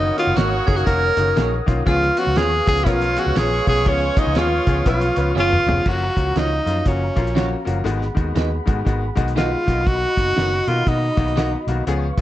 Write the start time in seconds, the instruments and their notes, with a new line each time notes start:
Already playing: horn section A#3 F#4 C#5, tenor saxophone D#4, tonewheel organ A#4 F#5 D#6, glockenspiel D#6
0.17 grand piano D#3 A#3 C#4 F#4, tenor saxophone F4, glockenspiel F6, closed hi-hat
0.27 fingered electric bass F#1
0.36 fingered electric bass G#1, grand piano D#3 A#3 C#4 F#4, clean electric guitar A#3 D#4 F#4 C#5, tenor saxophone F#4, glockenspiel F#6, snare, closed hi-hat
0.66 fingered electric bass F#1, grand piano D#3 A#3 C#4 F#4, tenor saxophone G#4, glockenspiel G#6, kick, closed hi-hat
0.76 tenor saxophone F#4, glockenspiel F#6, closed hi-hat
0.86 fingered electric bass F1, grand piano D#3 A#3 C#4 F#4, tenor saxophone A#4, glockenspiel A#6, kick, closed hi-hat
1.16 fingered electric bass F#1, grand piano D#3 A#3 C#4 F#4, closed hi-hat
1.36 fingered electric bass A#1, grand piano D#3 A#3 C#4 G#4, clean electric guitar A#3 D#4 F#4 C#5, snare, closed hi-hat
1.66 fingered electric bass B1, grand piano D#3 A#3 C#4 F4, kick, snare, closed hi-hat
1.85 fingered electric bass C#2, grand piano F3 B3 C#4 G#4, tenor saxophone F4, tonewheel organ B4 F5 C#6, glockenspiel F6, kick, closed hi-hat
2.02 snare
2.16 grand piano F3 B3 C#4 F4, tenor saxophone F#4, glockenspiel F#6, closed hi-hat
2.27 fingered electric bass C#2
2.35 fingered electric bass D#2, grand piano F3 B3 C#4 G#4, clean electric guitar B3 F4 G#4 C#5, tenor saxophone G#4, glockenspiel G#6, snare, closed hi-hat
2.65 fingered electric bass C#2, grand piano F3 B3 C#4 G#4, tenor saxophone G#4, glockenspiel G#6, kick, closed hi-hat
2.77 closed hi-hat
2.82 grand piano F3 B3, tenor saxophone E4, glockenspiel E6
2.86 fingered electric bass B1, horn section G#3 F4 C#5, grand piano C#4 A#4, tenor saxophone F4, glockenspiel F6, kick, closed hi-hat
3.01 closed hi-hat
3.16 grand piano F3 B3 C#4 G#4, tenor saxophone F#4, glockenspiel F#6, closed hi-hat
3.26 fingered electric bass C#2
3.35 fingered electric bass A#1, grand piano F3 B3 C#4 G#4, clean electric guitar B3 F4 G#4 C#5, tenor saxophone G#4, glockenspiel G#6, snare, closed hi-hat
3.66 fingered electric bass B1, grand piano F3 B3 C#4 G#4, tenor saxophone G#4, glockenspiel G#6, kick, open hi-hat
3.85 fingered electric bass C#2, grand piano F3 B3 C#4 G#4, tenor saxophone C#4, glockenspiel C#6, kick, closed hi-hat
4.16 grand piano F3 B3 C#4 G#4, tenor saxophone D#4, glockenspiel D#6, kick, closed hi-hat
4.27 fingered electric bass C#2
4.35 fingered electric bass D#2, grand piano F3 B3 C#4 G#4, clean electric guitar B3 F4 G#4 C#5, tenor saxophone F4, glockenspiel F6, snare, closed hi-hat
4.66 fingered electric bass C#2, grand piano F3 B3 C#4 G#4, kick, closed hi-hat
4.85 fingered electric bass B1, grand piano F3 B3 C#4 B4, tenor saxophone F4, glockenspiel F6, kick, closed hi-hat
5.01 closed hi-hat
5.16 fingered electric bass C#2, grand piano F3 B3 C#4 B4, closed hi-hat
5.35 fingered electric bass F#1, grand piano F3 B3 C#4 G#4, clean electric guitar B3 F4 G#4 C#5, snare
5.40 tenor saxophone F4
5.53 mid tom
5.66 fingered electric bass F1, grand piano F3 B3 C#4 G#4, floor tom
5.85 fingered electric bass F#1, grand piano F3 A#3 C#4 F#4, tonewheel organ F#4 F5 A#5, tenor saxophone F#4, kick, crash
6.16 fingered electric bass C#2, grand piano F3 A#3 C#4 F#4, kick, closed hi-hat
6.35 fingered electric bass C#2, grand piano F3 A#3 C#4 F#4, clean electric guitar C#4 F4 A#4 C#5, tenor saxophone D#4, snare, closed hi-hat
6.66 fingered electric bass F#2, grand piano F3 A#3 C#4 F4, closed hi-hat
6.85 fingered electric bass F#1, grand piano F3 A#3 C#4 F#4, tenor saxophone C#4, kick, closed hi-hat
7.15 fingered electric bass A#1, grand piano F3 A#3 C#4 F4, kick, closed hi-hat
7.27 closed hi-hat
7.34 grand piano F3 A#3 C#4 F#4, clean electric guitar C#4 F4 A#4 C#5, snare, closed hi-hat
7.65 fingered electric bass F#1, grand piano F3 A#3 C#4 F#4, closed hi-hat
7.84 fingered electric bass G#1, grand piano D#3 G#3 B3 F#4, tonewheel organ G#4 F#5 B5, closed hi-hat
8.02 snare
8.15 fingered electric bass D#2, grand piano D#3 G#3 B3 F#4, kick, closed hi-hat
8.34 fingered electric bass D#2, grand piano D#3 G#3 B3 F#4, clean electric guitar D#4 F#4 B4 D#5, snare, closed hi-hat
8.66 fingered electric bass G#2, grand piano D#3 G#3 B3 F#4, kick, closed hi-hat
8.85 fingered electric bass G#1, grand piano D#3 G#3 B3 F#4, kick, closed hi-hat
9.15 fingered electric bass B1, grand piano D#3 G#3 B3 F#4, kick, closed hi-hat
9.28 closed hi-hat
9.35 grand piano D#3 G#3 B3 F#4, clean electric guitar D#4 F#4 B4 D#5, tenor saxophone F4, snare, closed hi-hat
9.66 fingered electric bass B1, grand piano D#3 A#3 B3 F#4, tonewheel organ F#4 D#5 B5, kick, closed hi-hat
9.87 tenor saxophone F#4, kick, closed hi-hat
10.16 fingered electric bass F#1, grand piano D#3 A#3 B3 F#4, kick, closed hi-hat
10.36 fingered electric bass F#1, grand piano D#3 A#3 B3 C#4, clean electric guitar D#4 F#4 A#4 D#5, snare, closed hi-hat
10.67 fingered electric bass B2, grand piano D#3 A#3 B3 F#4, tenor saxophone F4, closed hi-hat
10.86 fingered electric bass B2, grand piano D#3 A#3 B3 F#4, tenor saxophone D#4, kick, closed hi-hat
11.17 fingered electric bass B1, grand piano D#3 A#3 B3 F#4, kick, closed hi-hat
11.28 closed hi-hat
11.36 grand piano D#3 A#3 B3 F#4, clean electric guitar D#4 F#4 A#4 D#5, snare, closed hi-hat
11.67 fingered electric bass B1, grand piano D#3 A#3 B3 F#4, closed hi-hat
11.87 fingered electric bass C#2, grand piano F3 B3 C#4 G#4, tonewheel organ B4 F5 C#6, closed hi-hat
12.17 fingered electric bass G#1, grand piano F3 B3, kick, closed hi-hat